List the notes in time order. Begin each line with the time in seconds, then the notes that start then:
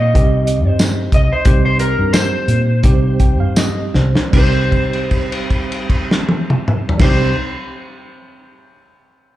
Already playing: A#2 D#5
0.14 C2 G3 C4 D#4 G4, kick, closed hi-hat
0.47 closed hi-hat
0.65 G2
0.70 C5
0.79 snare, closed hi-hat, tambourine
1.12 C2 D#5, kick, closed hi-hat
1.32 C5
1.45 C2 G3 C4 D#4 G4, kick, closed hi-hat
1.66 C5
1.79 A#4, closed hi-hat
1.98 G2
2.13 C5, snare, closed hi-hat, tambourine
2.48 A#2, closed hi-hat
2.83 C2 G3 C4 D#4 G4, kick, closed hi-hat
3.20 G5, kick, closed hi-hat
3.40 G2 F5
3.56 D#5, snare, closed hi-hat, tambourine
3.94 C2 C5, snare
4.15 snare
4.31 C2 G3 C4 D#4 C5, kick, crash
4.36 G4
4.72 kick, crash
4.93 crash
5.11 kick, crash
5.32 crash
5.50 kick, crash
5.72 crash
5.90 kick, crash
6.11 snare
6.29 high tom
6.50 mid tom
6.68 mid tom
6.89 floor tom
6.98 C2 G3 C4 D#4, kick, snare, crash
7.02 G4 C5